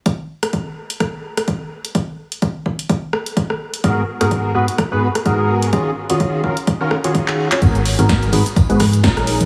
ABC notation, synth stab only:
X:1
M:4/4
L:1/16
Q:"Swing 16ths" 1/4=127
K:G#dor
V:1 name="Synth stab"
z16 | z16 | [G,,B,FGA] z2 [G,,B,FGA]3 [G,,B,FGB] z2 [G,,B,FGB] z2 [G,,B,FGA]4 | [D,CEFG] z2 [D,CEFG]3 [D,CEFA] z2 [D,CEFA] z [D,CEFG]4 [CEFc] |
[G,,B,FGA] z2 [G,,B,FGA]3 [G,,B,FGB] z2 [G,,B,FGB] z2 [A,,CDGA]4 |]